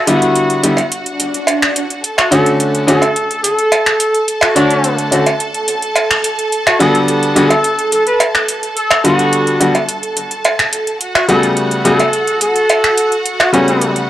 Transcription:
Already playing: F#4 F#5
0.07 D3 G3 B3 E4 F#4, closed hi-hat
0.22 closed hi-hat
0.36 closed hi-hat
0.50 closed hi-hat
0.63 D3 G3 B3 E4, closed hi-hat
0.77 closed hi-hat, cowbell
0.91 closed hi-hat, swell
1.06 closed hi-hat
1.20 closed hi-hat
1.34 closed hi-hat
1.47 closed hi-hat, cowbell
1.62 finger snap, closed hi-hat
1.76 closed hi-hat
1.90 closed hi-hat
2.03 A4 A5, closed hi-hat
2.18 F#4, finger snap, closed hi-hat, cowbell
2.31 D3 A3 C#4 F#4 A4, closed hi-hat
2.46 closed hi-hat
2.60 closed hi-hat
2.75 closed hi-hat
2.87 D3 A3 C#4 F#4 A4, closed hi-hat
3.02 closed hi-hat, cowbell
3.16 closed hi-hat
3.31 closed hi-hat
3.44 A4, closed hi-hat
3.59 closed hi-hat
3.72 closed hi-hat, cowbell
3.86 finger snap, closed hi-hat
4.00 closed hi-hat
4.14 closed hi-hat
4.28 closed hi-hat
4.41 F#4, finger snap, closed hi-hat, cowbell
4.55 D3 A3 D4 F#4 C#5, closed hi-hat
4.71 closed hi-hat
4.84 closed hi-hat
4.98 closed hi-hat
5.11 D3 A3 C#4 F#4, closed hi-hat
5.26 closed hi-hat, cowbell
5.40 closed hi-hat
5.54 closed hi-hat
5.68 closed hi-hat
5.82 closed hi-hat
5.96 closed hi-hat, cowbell
6.11 finger snap, closed hi-hat
6.24 closed hi-hat
6.39 closed hi-hat
6.52 closed hi-hat
6.66 F#4, finger snap, closed hi-hat, cowbell
6.79 D3 G3 B3 F#4 A4, closed hi-hat
6.95 closed hi-hat
7.08 closed hi-hat
7.23 closed hi-hat
7.35 D3 G3 B3 F#4 A4, closed hi-hat
7.50 closed hi-hat, cowbell
7.64 closed hi-hat
7.79 closed hi-hat
7.92 A4, closed hi-hat
8.07 B4, closed hi-hat
8.20 closed hi-hat, cowbell
8.35 finger snap, closed hi-hat
8.48 closed hi-hat
8.63 closed hi-hat
8.77 A4, closed hi-hat
8.91 finger snap, closed hi-hat, cowbell
9.04 D3 G3 B3 F#4, closed hi-hat
9.19 closed hi-hat
9.33 closed hi-hat
9.47 closed hi-hat
9.60 D3 G3 B3 F#4, closed hi-hat
9.75 closed hi-hat, cowbell
9.89 closed hi-hat
10.03 closed hi-hat
10.17 closed hi-hat
10.31 closed hi-hat
10.45 closed hi-hat, cowbell
10.59 finger snap, closed hi-hat
10.73 closed hi-hat
10.87 closed hi-hat
11.01 F#4 F#5, closed hi-hat
11.15 F#4, finger snap, closed hi-hat, cowbell
11.28 C#3 G3 A3 B3 F#4 A4, closed hi-hat
11.43 closed hi-hat
11.57 closed hi-hat
11.71 closed hi-hat
11.85 C#3 G3 A3 B3 F#4 A4, closed hi-hat
11.99 closed hi-hat, cowbell
12.13 closed hi-hat
12.27 closed hi-hat
12.41 A4, closed hi-hat
12.56 closed hi-hat
12.69 closed hi-hat, cowbell
12.84 finger snap, closed hi-hat
12.97 closed hi-hat
13.12 closed hi-hat
13.25 closed hi-hat
13.40 F#4, finger snap, closed hi-hat, cowbell
13.53 C#3 G3 A3 B3 C#4 F#4, closed hi-hat
13.68 closed hi-hat
13.81 closed hi-hat
13.96 closed hi-hat

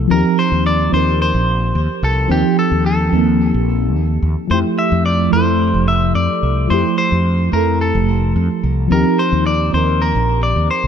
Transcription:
Already playing: F3 A3 E4 A4
0.07 D#2 F3 C4 A#4
0.12 D#4 G4
0.39 C5
0.52 D#2
0.66 D5
0.90 D#2 F3 C4
0.94 D#4 A#4 C5
1.22 C5
1.34 A#1
1.75 D#2
2.03 C2 A4
2.27 D#2 F3 C4
2.31 D#4 G4
2.59 A4
2.72 D#2
2.86 A4
3.10 D#2 F3 C4
3.14 A#3 D#4
3.54 A#1
3.95 D#2
4.22 D#2
4.48 F2 F3 A3 C5
4.52 E4 G4
4.79 E5
4.92 F2
5.06 D5
5.30 F2 F3 A3 C5
5.34 E4 A4
5.74 F1
5.88 E5
6.15 F2 D5
6.43 C2
6.67 F2 F3 A3 C5
6.72 E4 G4
6.98 C5
7.12 F2
7.50 F2 F3 A3 A#4
7.54 E4 A4
7.81 A4
7.95 F1
8.36 F2
8.63 C2
8.88 D#2 F3 C4
8.92 D#4 G4 A#4
9.19 C5
9.33 D#2
9.46 D5
9.70 D#2 F3 C4 C5
9.75 D#4 A#4
10.02 A#4
10.15 A#1
10.43 D5
10.56 D#2
10.71 C5
10.84 C2

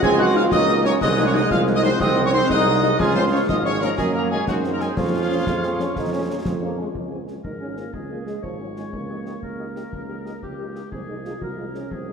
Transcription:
Already playing: F#4 D#5
0.02 C#2 C4 G#4 G#5 G#6, concert bass drum, snare
0.18 F#3 A#3 D#4 F#4 F#5 F#6
0.35 F#3 A#3 D#4 F4 F5 F6
0.51 C#2 A#3 D#4 F#4 D#5 D#6, concert bass drum, snare
0.68 F#3 A#3 D#4, snare
0.85 F#3 A#3 C#4 D#4 C#5 C#6, snare
1.01 C2 G#3 D#4 G#4 D#5 F#5 D#6, concert bass drum, snare, crash
1.18 F#3 G#3 D#4
1.26 C#4 C#5 C#6
1.34 F#3 G#3 D#4 D#5 D#6
1.50 C2 F4 F5 F6, concert bass drum, snare
1.67 F#3 G#3 D#4, snare
1.75 D#4 D#5 D#6
1.83 F#3 G#3 C4 D#4 C5 C6, snare
2.00 C2 C4 D#4 G#4 D#5 F#5 D#6, concert bass drum, snare
2.16 F#3 G#3 D#4
2.25 C#4 C#5 C#6
2.33 F#3 G#3 C4 D#4 C5 C6
2.49 C2 D#4 G#4 D#5 F#5 D#6, concert bass drum, snare
2.65 F#3 G#3 D#4, snare
2.82 F#3 G#3 D#4, snare
2.99 C#2 G#3 F4 G#4 F5 G#5, concert bass drum, snare, crash
3.15 F3 G#3 C4 C#4 C5 C6
3.32 F3 G#3 C#4 C#5 C#6
3.48 G#1 G#3 D#4 D#5 D#6, concert bass drum, snare
3.65 F3 G#3 C#4 C#5 C#6, snare
3.81 F3 G#3 A#3 C#4 A#4 A#5, snare
3.97 F#2 G#3 A#3 F#4 G#4 D#5 G#5, concert bass drum, snare
4.13 D#3 F#3 A#3 A#4 A#5
4.23 C#5
4.30 D#3 F#3 G#3 A#3 G#4 G#5
4.47 F#2 F#3 D#4 F#4 G#4 C5 F#5, concert bass drum, snare
4.64 D#3 G#3 C4, snare
4.72 A#3 A#4 A#5
4.80 D#3 G#3 C4 G#4 G#5, snare
4.97 F2 F3 C#4 F4 G#4 C#5 F5, concert bass drum, snare, crash
5.13 F3 G#3 C#4
5.30 F3 G#3 C#4
5.47 F2 G#3, concert bass drum, snare
5.63 F3 G#3 C4 C#4, snare
5.79 F3 G#3 C#4, snare
5.96 F2 D#4, concert bass drum, snare
6.12 F3 G#3 C#4
6.29 F3 G#3 A#3 C#4
6.45 F2 G#3, concert bass drum, snare
6.62 F3 G#3 A#3 C#4
6.78 F3 G#3 C#4
6.95 C#2 G#3, concert bass drum
7.11 C4 C#4 F4 G#4 G#5
7.27 C#4 F4 G#4 G#5, snare
7.44 G#1 D#4 A#4, concert bass drum
7.61 C#4 F4 G#4 G#5
7.76 A#3 C#4 F4 G#4 G#5, snare
7.93 C#2 G#3 G#4, concert bass drum
8.10 A#3 C#4 F4 G#4 G#5
8.26 G#3 C#4 F4 G#4 G#5, snare
8.42 G#1 F3 C#5, concert bass drum
8.59 F#3 C#4 F4 G#4 G#5
8.76 G#3 C#4 F4 G#4 G#5, snare
8.93 C#2 A#3, concert bass drum
9.09 A#3 D#4 G4 D#5
9.25 A#3 D#4 G4 D#5, snare
9.43 C#2 A#4, concert bass drum
9.59 A#3 D#4 G4 D#5
9.75 A#3 D#4 G4 D#5, snare
9.93 C#2, concert bass drum
10.08 A#3 D#4 G4 D#5
10.25 A#3 D#4 G4 D#5, snare
10.42 C#2 G4, concert bass drum
10.58 A#3 D#4 G4 D#5
10.75 A#3 D#4 G4 D#5, snare
10.91 C2 C4 G#4, concert bass drum
11.08 G#3 D#4 G#4 D#5
11.24 G#3 D#4 F4 G#4 D#5, snare
11.41 C2 F#4 A#4, concert bass drum
11.57 G#3 D#4 F4 G#4 D#5
11.74 G#3 C#4 D#4 G#4 D#5, snare
11.91 C2 C4 G#4, concert bass drum
12.07 G#3 C#4 D#4 G#4 D#5

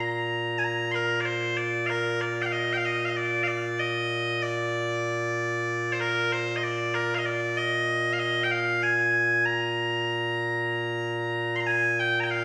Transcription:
Already playing: A#2
0.00 A#5
0.59 G#5
0.64 A#5
0.91 A#4 C6
1.21 D5
1.25 C5
1.57 D5
1.86 A#4 F5
2.21 D5
2.42 F5 G5
2.52 D#5
2.73 G5
2.77 F5
2.85 D#5
3.05 D#5 F5
3.16 D5
3.43 F5
3.47 D5
3.79 D#5
4.42 D5
5.92 C5
6.00 A#4
6.32 C5
6.56 D#5
6.63 D5
6.94 A#4
7.15 D#5 F5
7.26 D5
7.57 D#5
8.13 F5
8.19 D#5
8.43 G5
8.51 F5
8.83 G#5
9.46 A#5
11.56 C6
11.60 A#5
11.67 G#5
11.99 G5
12.20 G5 A#5
12.31 F5

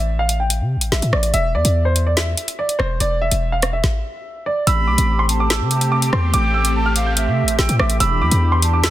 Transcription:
Already playing: A1 E5
0.19 F5
0.29 closed hi-hat
0.40 G5
0.50 closed hi-hat
0.61 C3
0.76 A1
0.81 closed hi-hat
0.92 A1 E5, snare
1.02 A2, closed hi-hat
1.13 A1 D5, cross-stick
1.23 closed hi-hat
1.34 E1 E5, closed hi-hat
1.54 E2 D5
1.65 E2, closed hi-hat
1.85 C5
1.96 closed hi-hat
2.07 D5
2.17 E5, snare, closed hi-hat
2.37 closed hi-hat
2.48 closed hi-hat
2.59 D5
2.69 closed hi-hat
2.79 E1 C5, cross-stick
3.00 E1 D5, closed hi-hat
3.22 E5
3.31 E1, closed hi-hat
3.52 F5
3.62 cross-stick, closed hi-hat
3.73 E5
3.84 kick, snare
4.46 D5
4.67 A1 A3 C4 G4 B5 E6, closed hi-hat
4.87 B1 D6
4.98 A1, closed hi-hat
5.19 C6
5.29 A5, closed hi-hat
5.40 D6
5.50 E6, snare, closed hi-hat
5.61 C3
5.71 closed hi-hat
5.81 closed hi-hat
5.92 D6
6.02 closed hi-hat
6.13 E2 G5 C6, cross-stick
6.34 A1 G5 D6, closed hi-hat
6.54 E6
6.65 closed hi-hat
6.75 A5
6.86 F6
6.96 F5, closed hi-hat
7.06 G6
7.17 E5, closed hi-hat
7.27 C3
7.43 A1
7.48 closed hi-hat
7.59 A1 G5 E6, snare
7.69 A2, closed hi-hat
7.79 A1 E5 D6, cross-stick
7.90 closed hi-hat
8.00 E1 E3 D4 G4 B5 E6, closed hi-hat
8.21 E2 D6
8.31 E2, closed hi-hat
8.52 C6
8.62 A5, closed hi-hat
8.73 D6
8.84 E6, snare, closed hi-hat

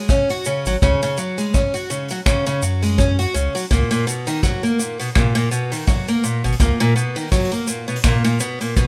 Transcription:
0.09 C#4, kick, shaker
0.29 F#4, open hi-hat, shaker
0.45 C#3, shaker
0.65 G#1 F#3, open hi-hat, shaker
0.82 C#2 C#3, kick, shaker
1.02 C#3, open hi-hat, shaker
1.17 F#3, shaker
1.38 G#3, open hi-hat, shaker
1.54 C#4, kick, shaker
1.74 F#4, open hi-hat, shaker
1.90 C#3, shaker
2.08 F#3, open hi-hat, shaker
2.26 C#3, finger snap, kick, shaker
2.46 C#3, open hi-hat, shaker
2.62 F#2 F#3, shaker
2.83 G#3, open hi-hat, shaker
2.98 C#4, kick, shaker
3.19 F#4, open hi-hat, shaker
3.34 C#2 C#3, shaker
3.55 F#3, open hi-hat, shaker
3.71 C#2 A#2, kick, shaker
3.91 A#2, open hi-hat, shaker
4.07 B2, shaker
4.27 D#3, open hi-hat, shaker
4.43 F#3, kick, shaker
4.63 A#3, open hi-hat, shaker
4.79 A#2, shaker
4.99 B2, open hi-hat, shaker
5.15 A#2, finger snap, kick, shaker
5.35 A#2, open hi-hat, shaker
5.51 B2, shaker
5.71 D#3, open hi-hat, shaker
5.87 F#3, kick, shaker
6.07 A#3, open hi-hat, shaker
6.24 A#2, shaker
6.44 G#1 B2, shaker
6.52 open hi-hat
6.60 C#2 A#2, kick, shaker
6.80 A#2, open hi-hat, shaker
6.96 B2, shaker
7.16 D#3, open hi-hat, shaker
7.21 open hi-hat
7.27 open hi-hat
7.32 F#3, kick, open hi-hat, shaker
7.39 open hi-hat
7.45 open hi-hat
7.52 A#3, open hi-hat, shaker
7.67 A#2, shaker
7.88 B2, shaker
7.96 open hi-hat
8.04 A#2, finger snap, kick, shaker
8.24 A#2, open hi-hat, shaker
8.40 B2, shaker
8.61 A#2, open hi-hat, shaker
8.77 B2, kick, shaker

